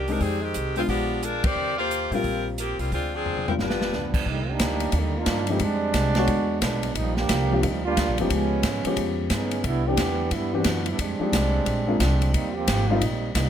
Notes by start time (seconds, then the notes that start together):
Already playing: C2
0.08 G3 G#3 C4 D4 D#4 G4 A#4, open hi-hat
0.20 F2 D#3 G3 C4 G#4, kick, open hi-hat
0.41 D#3 G#3 C4 G4
0.54 C2, closed hi-hat
0.76 G#3 B3 C4 D4 D#4 F4, open hi-hat
0.88 A#1 F3 B3 D4 G4, kick, open hi-hat
1.23 G#3 D4 F4 A#4, closed hi-hat
1.44 D2 C4 G4 A#4 D5, kick, ride
1.56 D#2
1.78 A#3 F4 G4 C5
1.91 closed hi-hat
2.11 A#2 G3 A#3 C4 F4 A#4, open hi-hat
2.24 A#1, kick, open hi-hat
2.58 F3 A#3 C4 G4, closed hi-hat
2.79 C2 G3 A#3 C4 F4, open hi-hat
2.92 D2 G#3 C4 D4 F4, kick, open hi-hat
3.14 F3 C4 D4 G#4
3.26 floor tom
3.37 floor tom
3.48 G3 B3 C4 D4 D#4 F4 A#4, floor tom
3.59 G1 G3 D4 F4 B4, snare
3.70 snare
3.81 snare
3.93 C#2 F3 G3 B3 D4, snare
4.14 kick, crash
4.26 C2 D3 G3 A#3 D#4, kick
4.50 A#3 D4 D#4 G4
4.59 D2, kick, snare, hi-hat pedal, ride
4.80 ride
4.92 D#2, kick, ride
4.96 D3 G3 A#3 D#4
5.17 A#3 D4 D#4 F4
5.26 G2, kick, snare, hi-hat pedal, ride
5.47 D3 F3 G3 G#3 A#3 C4 D#4 G4, ride
5.59 F2 G3 G#3 C4 D4, kick, ride
5.94 C2, kick, snare, hi-hat pedal, ride
6.15 D3 G#3 B3 F#4 C#5, snare, ride
6.27 E2, kick, ride
6.62 B1 F#3 G#3 B3 D4, kick, snare, hi-hat pedal, ride
6.83 ride
6.95 A#1 F3 G3 A#3 D#4, kick, ride
7.17 F3 A#3 D4 G4, snare
7.29 C2, kick, snare, hi-hat pedal, ride
7.52 F3 A#3 C4 D4 G4
7.63 D2 F3 G3 A#3 D#4, kick, ride
7.85 G3 A#3 D4 F4
7.97 D2, kick, snare, hi-hat pedal, ride
8.08 A#1
8.18 G1 F3 G3 G#3 A#3 B3 C#4 D#4 G4, ride
8.30 C#2 F3 G#3 B3 C#4, kick, ride
8.63 G#2, kick, snare, hi-hat pedal, ride
8.85 F3 G#3 B3 C#4 G4, muted upright bass stroke, ride
8.96 F2, kick, ride
9.30 G2 B3 C#4 D#4 G#4, kick, snare, hi-hat pedal, ride
9.51 ride
9.64 C2 G3 B3 D4 E4, kick, ride
9.87 E3 B3 C4 D4 G4
9.97 E2, kick, snare, hi-hat pedal, ride
10.31 G2 G3 B3 D4 E4, kick, ride
10.53 E3 B3 C4 D4 F#4 G4
10.64 F#2, kick, snare, hi-hat pedal, ride
10.86 B3 D4 E4, ride
10.90 G3
10.99 F2 G3 G#3 C4 D4, kick, ride
11.19 F3 G#3 C4 D#4 G4, muted upright bass stroke
11.32 C2, kick, snare, hi-hat pedal, ride
11.66 A#1, kick, ride
11.87 G#3 A#3 C4 D4 F4
12.00 C2 F3 G#3 C4 D4, kick, snare, hi-hat pedal, ride
12.22 ride
12.34 D#2 G3 A#3 C4 D#4, kick, ride
12.54 F3 A#3 C4 G4
12.68 G#1, kick, snare, hi-hat pedal, ride
12.89 G3 A#3 C4 D#4 F4
13.01 A#1 G3 A#3 C4 D#4, kick, ride
13.34 C2 G3 A#3 C4 D#4, kick, snare, hi-hat pedal, ride